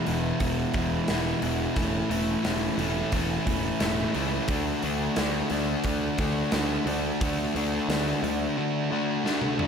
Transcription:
0.06 picked electric bass E1, overdriven electric guitar E2 B2 E3 G#3 B3 E4, open hi-hat
0.40 picked electric bass E1, overdriven electric guitar E2 B2 E3 G#3 B3 E4, kick, open hi-hat
0.74 picked electric bass E1, overdriven electric guitar E2 B2 E3 G#3 B3 E4, kick, open hi-hat
1.08 picked electric bass E1, overdriven electric guitar E2 B2 E3 G#3 B3 E4, snare, open hi-hat
1.42 picked electric bass E1, overdriven electric guitar E2 B2 E3 G#3 B3 E4, open hi-hat
1.76 picked electric bass E1, distorted electric guitar A2, overdriven electric guitar E3 A3 C#4 E4, kick, open hi-hat
2.10 picked electric bass E1, distorted electric guitar A2, overdriven electric guitar E3 A3 C#4 E4, open hi-hat
2.44 picked electric bass E1, distorted electric guitar A2, overdriven electric guitar E3 A3 C#4 E4, snare, open hi-hat
2.78 picked electric bass E1, distorted electric guitar A2, overdriven electric guitar E3 A3 C#4 E4, open hi-hat
3.12 picked electric bass E1, distorted electric guitar A2, overdriven electric guitar E3 A3 C#4 E4, kick, open hi-hat
3.46 picked electric bass E1, distorted electric guitar A2, overdriven electric guitar E3 A3 C#4 E4, kick, open hi-hat
3.80 picked electric bass E1, distorted electric guitar A2, overdriven electric guitar E3 A3 C#4 E4, snare, open hi-hat
4.14 picked electric bass C#2, distorted electric guitar A2, overdriven electric guitar E3 A3 C#4 E4, open hi-hat
4.48 picked electric bass D2, overdriven electric guitar D3 A3 D4 F#4, kick, open hi-hat
4.83 picked electric bass D2, overdriven electric guitar D3 A3 D4 F#4, open hi-hat
5.16 picked electric bass D2, overdriven electric guitar D3 A3 D4 F#4, snare, open hi-hat
5.50 picked electric bass D2, overdriven electric guitar D3 A3 D4 F#4, open hi-hat
5.84 picked electric bass D2, overdriven electric guitar D3 A3 D4 F#4, kick, open hi-hat
6.18 picked electric bass D2, overdriven electric guitar D3 A3 D4 F#4, kick, open hi-hat
6.52 picked electric bass D2, overdriven electric guitar D3 A3 D4 F#4, snare, open hi-hat
6.86 picked electric bass D2, overdriven electric guitar D3 A3 D4 F#4, open hi-hat
7.21 picked electric bass D2, overdriven electric guitar D3 A3 D4 F#4, kick, open hi-hat
7.55 picked electric bass D2, overdriven electric guitar D3 A3 D4 F#4, open hi-hat
7.88 picked electric bass D2, overdriven electric guitar D3 A3 D4 F#4, snare, open hi-hat
8.23 picked electric bass D2, overdriven electric guitar D3 A3 D4 F#4, open hi-hat
8.57 overdriven electric guitar D3 A3 D4 F#4
8.91 overdriven electric guitar D3 A3 D4 F#4
9.24 overdriven electric guitar D3 A3 D4 F#4, snare
9.42 high tom
9.58 overdriven electric guitar D3 A3 D4 F#4, mid tom

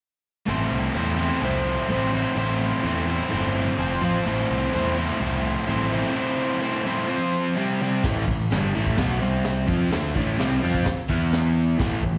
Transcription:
0.46 picked electric bass A1, overdriven electric guitar A2 A3 C4 E4 C5
0.72 picked electric bass C2
0.94 picked electric bass E2, overdriven electric guitar A2 A3 C4 E4 C5
1.17 overdriven electric guitar A2 A3 C4 E4 C5
1.42 picked electric bass C2, overdriven electric guitar A2 A3 C4 E4 C5
1.89 picked electric bass A1, overdriven electric guitar A2 A3 C4 E4 C5
2.12 overdriven electric guitar A2 A3 C4 E4 C5
2.35 picked electric bass A1, overdriven electric guitar A2 A3 C4 E4 C5
2.83 picked electric bass E2, overdriven electric guitar A2 A3 C4 E4 C5
3.06 overdriven electric guitar A2 A3 C4 E4 C5
3.29 picked electric bass G1, overdriven electric guitar A2 A3 C4 E4 C5
3.77 picked electric bass F1, overdriven electric guitar F3 C4 F4 C5
4.02 picked electric bass A1, overdriven electric guitar F3 C4 F4 C5
4.25 picked electric bass A1, overdriven electric guitar A2 A3 C4 E4 C5
4.50 picked electric bass C2
4.72 picked electric bass E2, overdriven electric guitar A2 A3 C4 E4 C5
4.96 overdriven electric guitar A2 A3 C4 E4 C5
5.20 picked electric bass C2, overdriven electric guitar A2 A3 C4 E4 C5
5.67 picked electric bass A1, overdriven electric guitar A2 A3 C4 E4 C5
5.90 overdriven electric guitar A2 A3 C4 E4 C5
6.14 overdriven electric guitar A2 A3 C4 E4 C5
6.61 overdriven electric guitar A2 A3 C4 E4 C5
6.85 overdriven electric guitar A2 A3 C4 E4 C5
7.08 overdriven electric guitar F3 C4 F4 C5
7.55 overdriven electric guitar C3 G3 C4 G4
7.80 overdriven electric guitar C3 G3 C4 G4
8.04 picked electric bass A1, overdriven electric guitar A2 E3 A3, kick, snare, crash
8.27 picked electric bass A1, overdriven electric guitar A2 E3, kick
8.51 picked electric bass G1, overdriven electric guitar G2 D3 G3, snare, open hi-hat
8.74 picked electric bass A1, overdriven electric guitar A2 E3 A3
8.86 kick
8.97 picked electric bass B1, overdriven electric guitar B2 F#3 B3, kick, snare, open hi-hat
9.20 picked electric bass C2, overdriven electric guitar C3 G3 C4
9.44 snare, open hi-hat
9.67 picked electric bass F2, overdriven electric guitar F3 C4 F4, kick
9.90 picked electric bass D2, overdriven electric guitar D3 A3 D4, snare, open hi-hat
10.15 picked electric bass A1, overdriven electric guitar A2 E3 A3, kick
10.38 picked electric bass C2, overdriven electric guitar C3 G3 C4, snare, open hi-hat
10.62 picked electric bass F2, overdriven electric guitar F3 C4 F4
10.74 kick
10.85 muted overdriven electric guitar stroke, muted picked electric bass stroke, kick, snare, open hi-hat
11.09 picked electric bass E2, overdriven electric guitar E3 B3 E4, kick
11.33 snare, open hi-hat
11.79 picked electric bass A1, overdriven electric guitar A2 E3 A3, kick, snare, open hi-hat
12.03 picked electric bass A1, overdriven electric guitar A2 E3, kick

